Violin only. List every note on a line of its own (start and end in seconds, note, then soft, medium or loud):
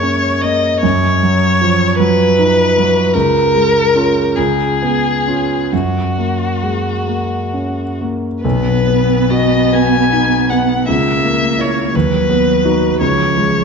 0.00 0.43 C#5 medium
0.41 0.81 D#5 medium
0.82 1.97 C#5 medium
1.99 3.15 B4 medium
3.14 4.37 A#4 medium
4.36 5.73 G#4 medium
5.72 8.01 F#4 soft
8.44 9.32 B4 medium
9.30 9.75 D#5 medium
9.73 10.51 G#5 medium
10.49 10.87 F#5 soft
10.88 11.62 E5 medium
11.61 11.97 C#5 soft
11.95 13.00 B4 medium
13.01 13.64 C#5 medium